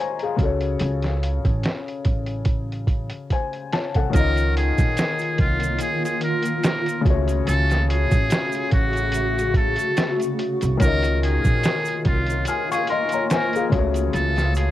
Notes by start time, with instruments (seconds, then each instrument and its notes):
Already playing: upright piano D#3 C#4 F4 C#5 D#5 F5 A#5 C6 C#6 F6
0.00 upright piano C5 G#5
0.19 upright piano G#4 F5, closed hi-hat
0.36 upright bass C#2, upright piano C#3 C#4, kick, closed hi-hat
0.41 upright piano F#4 A4
0.45 upright piano C#5
0.61 closed hi-hat
0.80 upright bass C#2, closed hi-hat
1.02 snare, closed hi-hat
1.23 closed hi-hat
1.45 upright bass A1, kick, closed hi-hat
1.63 snare, closed hi-hat
1.88 closed hi-hat
2.05 upright bass A1, kick, closed hi-hat
2.26 closed hi-hat
2.45 kick, closed hi-hat
2.72 closed hi-hat
2.87 kick, closed hi-hat
3.10 closed hi-hat
3.30 upright piano C5 G#5, kick, closed hi-hat
3.53 closed hi-hat
3.73 upright piano C#5 A5, snare, closed hi-hat
3.94 upright bass C2, upright piano A4 F#5, kick, closed hi-hat
4.10 upright piano D#3 C#4, ambient pad D#3 A#3 F4, kick, closed hi-hat
4.14 upright bass C#2, upright piano F4 A#4, muted trumpet A#4, shaker
4.19 upright piano D#5
4.36 closed hi-hat, shaker
4.57 muted trumpet G#4, closed hi-hat
4.78 upright bass A#1, kick, closed hi-hat, shaker
4.97 snare, closed hi-hat, shaker
5.19 closed hi-hat, shaker
5.38 upright bass C2, muted trumpet F4, kick, closed hi-hat
5.60 closed hi-hat, shaker
5.79 muted trumpet G#4, closed hi-hat, shaker
6.05 muted trumpet G#4, closed hi-hat, shaker
6.21 muted trumpet A#4, closed hi-hat
6.42 closed hi-hat, shaker
6.64 muted trumpet A#4, snare, closed hi-hat, shaker
6.86 closed hi-hat, shaker
7.01 upright piano C#3 C#4, ambient pad C#3 A3 F#4
7.05 upright bass C#2, upright piano A3 F#4, kick, closed hi-hat
7.10 upright piano C#5
7.28 closed hi-hat, shaker
7.47 upright bass C#2, muted trumpet A4, closed hi-hat, shaker
7.69 snare, closed hi-hat, shaker
7.90 muted trumpet G#4, closed hi-hat
8.11 upright bass A1, kick, closed hi-hat, shaker
8.30 snare, closed hi-hat, shaker
8.52 closed hi-hat, shaker
8.71 upright bass A1, muted trumpet F#4, kick, closed hi-hat
8.93 closed hi-hat, shaker
9.12 closed hi-hat, shaker
9.39 closed hi-hat, shaker
9.54 muted trumpet A4, kick, closed hi-hat
9.76 closed hi-hat, shaker
9.97 snare, closed hi-hat, shaker
10.20 closed hi-hat, shaker
10.39 closed hi-hat
10.61 upright bass C2, closed hi-hat, shaker
10.77 upright bass C#2, upright piano D#3 C#4, ambient pad D#3 A#3 F4, kick, closed hi-hat
10.82 upright piano F4 A#4, muted trumpet A#4, shaker
10.86 upright piano D#5
11.03 closed hi-hat, shaker
11.23 muted trumpet G#4, closed hi-hat
11.45 upright bass A#1, kick, closed hi-hat, shaker
11.63 snare, closed hi-hat, shaker
11.85 closed hi-hat, shaker
12.05 upright bass C2, muted trumpet F4, kick, closed hi-hat
12.27 closed hi-hat, shaker
12.45 muted trumpet G#4, upright piano G#5 F6, closed hi-hat, shaker
12.72 muted trumpet G#4, upright piano F5 C#6, closed hi-hat, shaker
12.87 muted trumpet A#4, upright piano D#5 C6, closed hi-hat
13.09 closed hi-hat, shaker
13.14 upright piano C#5 A#5
13.30 muted trumpet A#4, upright piano C5 G#5, snare, closed hi-hat, shaker
13.53 upright piano G#4 F5, closed hi-hat, shaker
13.70 upright bass C#2, upright piano C#3 C#4, ambient pad C#3 A3 F#4, kick, closed hi-hat
13.74 upright piano A3 F#4
13.78 upright piano C#5
13.94 closed hi-hat, shaker
14.13 upright bass C#2, muted trumpet A4, closed hi-hat, shaker
14.36 snare, closed hi-hat, shaker
14.55 muted trumpet G#4, closed hi-hat, shaker